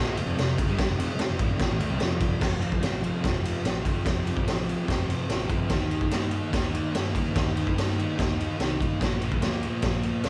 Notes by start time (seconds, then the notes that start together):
Already playing: A#1 A#2 F3
0.00 A#3
0.17 F1 F2 C3, ride
0.27 F1 F2 C3
0.37 F1 F2 C3, snare, ride
0.58 F1 F2 C3, kick, ride
0.68 G1 G2 D3 G3
0.79 kick, snare, ride
0.89 F1 F2 C3
0.98 F1 F2 C3, ride
1.10 muted distorted electric guitar stroke
1.18 muted distorted electric guitar stroke, muted fingered electric bass stroke, snare, ride
1.28 F1 F2 C3
1.39 A1 A2 E3, kick, ride
1.49 F1 F2 C3
1.60 A#1 A#2 F3, kick, snare, ride
1.69 A1 A2 E3
1.79 D2 D3 A3, ride
1.90 C2 C3 G3
2.00 F1 F2 C3 F3, snare, ride
2.20 kick, ride
2.40 F1 F2 C3 F3, kick, snare, crash
2.60 F3, ride
2.65 C3
2.72 kick
2.81 A1 F2 C3 F3, snare, ride
3.01 C3 F3, ride
3.22 F1 F2 C3, kick, snare, ride
3.26 F3
3.42 F3, ride
3.47 C3
3.64 A1 F2 C3, snare, ride
3.68 F3
3.83 F3, kick, ride
3.87 C3
4.04 F1 F2 C3, kick, snare, ride
4.09 F3
4.25 C3 F3, ride
4.37 kick
4.45 A1 F2 C3 F3, snare, ride
4.65 F3
4.69 C3, ride
4.85 F1 F2 C3 F3, kick
4.90 snare, ride
5.06 F3, ride
5.11 C3
5.27 A1 F2 C3, snare, ride
5.31 F3
5.49 F3, kick, ride
5.53 C3
5.68 D#2 D#3 A#3 D#4, kick, snare, ride
5.89 A#3 D#4, ride
6.01 kick
6.09 G2 D#3 A#3, snare, ride
6.13 D#4
6.31 D#4, ride
6.36 A#3
6.50 D#2 D#3 A#3, kick, snare, ride
6.55 D#4
6.71 D#4, ride
6.76 A#3
6.92 G2 D#3 A#3 D#4, snare, ride
7.13 D#4, kick, ride
7.17 A#3
7.32 D#2 D#3 A#3, kick, ride
7.36 D#4, snare
7.54 D#4, ride
7.59 A#3
7.67 kick
7.75 G2 D#3 A#3 D#4, snare, ride
7.95 D#4
7.99 A#3, ride
8.15 D#3 A#3
8.19 D#2 D#4, kick, snare, ride
8.37 D#4, ride
8.42 A#3
8.57 C2 D#3 A#3, snare, ride
8.62 D#4
8.78 D#4, kick, ride
8.83 A#3
9.01 A#1 A#2 F3 A#3, kick, snare, ride
9.19 A#3, ride
9.24 F3
9.32 kick
9.41 D2 A#2 F3, snare, ride
9.46 A#3
9.63 A#3, ride
9.67 F3
9.82 A#1 A#2 F3, kick, snare, ride
9.87 A#3
10.03 A#3, ride
10.09 F3
10.24 D2 A#2, snare, ride